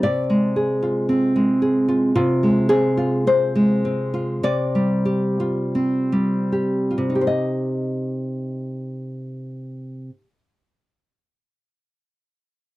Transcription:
0.03 C3 D5
0.30 G#3
0.56 G#4
0.83 F4
1.09 C4
1.36 G#3
1.62 G#4
1.88 F4
2.15 C3 F4
2.43 G#3
2.69 C4 G#4
2.97 F4
3.27 C4 C5
3.56 G#3
3.85 C4
4.14 F4
4.43 C3 D5
4.75 G3
5.05 G4
5.40 F4
5.75 C4
6.12 G3
6.52 G4
6.91 F4
6.98 C3
7.10 D#4
7.15 G4
7.21 C5
7.27 D#5

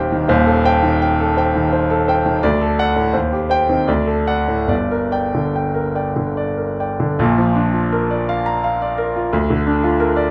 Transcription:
Already playing: D#1 D#2 D#3 C4 G4 C5 G5
0.12 D#3
0.28 D#1 D#2 C5
0.47 A4
0.65 C5 G5
0.83 D#3
1.02 G5
1.20 A4
1.37 C5 G5
1.55 D#3
1.73 C5
1.90 A4
2.08 C5 G5
2.26 D#3
2.43 D2 D5
2.61 A4
2.79 D5 F#5
2.96 A2
3.13 D#2 C5
3.33 G4
3.50 C5 G5
3.69 D#3 C4
3.88 D2 D5
4.07 A4
4.27 D5 F#5
4.48 A2
4.67 G1 G2 D5
4.91 A#4
5.12 D5 G5
5.35 D3
5.56 G5
5.75 A#4
5.95 D5 G5
6.16 D3
6.37 D5
6.57 A#4
6.80 D5 G5
7.00 D3
7.19 A#1 A#2
7.38 F3
7.55 D4
7.73 F4
7.92 A#4
8.11 D5
8.29 F5
8.46 A#5
8.64 F5
8.82 D5
8.98 A#4
9.16 F4
9.33 D2
9.50 D3
9.67 D4
9.84 F4
10.00 A#4
10.16 D5

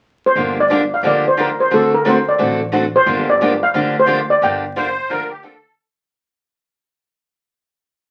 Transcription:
0.26 C5
0.35 G1 D3 F3 A#3 D4 G4
0.60 D5
0.70 D3 F3 A#3 D4 G4
0.94 F5
1.03 D2 D3 F3 A#3 D4 G4
1.07 D5
1.28 C5
1.37 D3 F3 A#3 D4 G4 A#4
1.60 C5
1.71 D2 D3 A3 C4 F#4 A4
1.94 A#4
2.05 D3 A3 C4 F#4 A4 C5
2.29 D5
2.38 A1 D3 A3 C4 F#4 A4
2.72 D3 A3 C4 F#4 A4
2.96 C5
3.06 G1 D3 F3 A#3 D4 G4
3.30 D5
3.41 D3 F3 A#3 D4 G4
3.63 F5
3.74 D2 D3 F3 A#3 D4 G4
4.00 C5
4.06 D3 F3 A#3 D4 G4
4.30 D5
4.42 G1 D3 F3 A#3 D4 G4 G5
4.76 D3 F3 A#3 D4 G4 C5
5.10 D2 D3 F3 A#3 D4 G4 A#4
5.30 G4
5.43 D3 F3 A#3 D4 G4 A4

